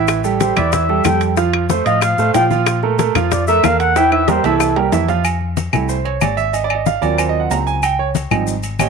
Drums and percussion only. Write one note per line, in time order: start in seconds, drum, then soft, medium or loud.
0.08 high bongo medium
0.08 high conga soft
0.08 high timbale loud
0.08 claves medium
0.08 maracas medium
0.24 high bongo soft
0.24 high conga soft
0.24 maracas medium
0.40 high bongo medium
0.40 high conga medium
0.40 high timbale medium
0.40 low timbale medium
0.40 maracas medium
0.56 high conga soft
0.56 low conga medium
0.56 high timbale loud
0.56 claves medium
0.56 maracas soft
0.72 high bongo medium
0.72 high conga soft
0.72 low conga medium
0.72 high timbale medium
0.72 maracas medium
0.89 high bongo soft
0.89 high conga soft
1.04 high bongo soft
1.04 low bongo medium
1.04 high conga medium
1.04 high timbale loud
1.04 low timbale medium
1.04 claves medium
1.04 maracas medium
1.21 high bongo soft
1.21 high conga soft
1.21 high timbale medium
1.21 maracas soft
1.37 high bongo medium
1.37 high conga soft
1.37 maracas medium
1.53 high bongo soft
1.53 high conga soft
1.53 high timbale loud
1.53 claves medium
1.70 high bongo medium
1.70 high conga medium
1.70 low timbale medium
1.70 maracas medium
1.86 high conga soft
1.86 high timbale medium
1.86 maracas soft
2.01 high bongo medium
2.01 high conga soft
2.01 high timbale loud
2.01 claves medium
2.01 maracas medium
2.18 high bongo soft
2.18 high conga soft
2.18 maracas medium
2.34 high bongo soft
2.34 low bongo medium
2.34 high conga soft
2.34 high timbale medium
2.34 low timbale medium
2.34 maracas medium
2.51 high bongo soft
2.51 high conga medium
2.51 maracas soft
2.66 high bongo medium
2.66 high conga soft
2.66 high timbale loud
2.66 claves medium
2.66 maracas medium
2.83 high bongo soft
2.83 high conga soft
2.99 high bongo medium
2.99 high conga loud
2.99 high timbale medium
2.99 low timbale medium
2.99 maracas medium
3.15 high conga soft
3.15 low conga medium
3.15 high timbale loud
3.15 claves medium
3.15 maracas soft
3.31 high bongo medium
3.31 high conga soft
3.31 low conga medium
3.31 high timbale medium
3.31 maracas medium
3.48 high bongo soft
3.48 high conga soft
3.48 maracas medium
3.63 high bongo soft
3.63 low bongo medium
3.63 high conga medium
3.63 high timbale medium
3.63 low timbale medium
3.63 claves medium
3.63 maracas medium
3.80 high bongo soft
3.80 high conga soft
3.80 high timbale medium
3.80 maracas soft
3.96 high bongo medium
3.96 high conga soft
3.96 high timbale medium
3.96 maracas medium
4.12 high bongo soft
4.12 high conga soft
4.12 high timbale medium
4.12 claves medium
4.28 high bongo medium
4.28 high conga loud
4.28 low timbale medium
4.28 maracas medium
4.44 high conga soft
4.44 low timbale medium
4.44 maracas soft
4.60 high bongo medium
4.60 high conga soft
4.60 low timbale medium
4.60 claves medium
4.60 maracas medium
4.76 high bongo soft
4.76 high conga soft
4.76 low timbale medium
4.92 high bongo soft
4.92 low bongo medium
4.92 high conga soft
4.92 low timbale medium
4.92 maracas medium
5.08 high bongo soft
5.08 low timbale medium
5.08 maracas soft
5.25 high conga soft
5.25 low agogo loud
5.25 claves medium
5.25 maracas medium
5.41 high conga soft
5.57 high conga medium
5.57 low timbale medium
5.57 low agogo medium
5.57 maracas medium
5.73 high conga soft
5.73 low conga medium
5.73 low agogo loud
5.73 claves medium
5.73 maracas soft
5.89 high conga soft
5.89 maracas medium
6.05 high conga soft
6.05 low agogo medium
6.21 high conga medium
6.21 low timbale medium
6.21 low agogo loud
6.21 claves medium
6.21 maracas medium
6.38 high conga soft
6.38 maracas soft
6.54 high conga soft
6.54 low agogo medium
6.54 maracas medium
6.70 high conga soft
6.70 low agogo loud
6.70 claves medium
6.86 high conga medium
6.86 low timbale medium
6.86 maracas medium
7.02 high conga soft
7.02 low agogo medium
7.02 maracas soft
7.18 high conga soft
7.18 low agogo loud
7.18 claves medium
7.18 maracas medium
7.35 high conga soft
7.51 high conga soft
7.51 low timbale medium
7.51 low agogo medium
7.51 maracas medium
7.67 maracas soft
7.83 high conga soft
7.83 low agogo loud
7.83 claves medium
7.83 maracas medium
7.99 high conga soft
8.15 high conga loud
8.15 low timbale medium
8.15 low agogo medium
8.15 maracas medium
8.31 high conga soft
8.31 low conga medium
8.31 low agogo loud
8.31 claves medium
8.31 maracas soft
8.47 high conga soft
8.47 maracas medium
8.63 high conga soft
8.63 low agogo medium
8.63 maracas medium
8.79 high conga medium
8.79 low timbale medium
8.79 low agogo loud
8.79 claves medium
8.79 maracas medium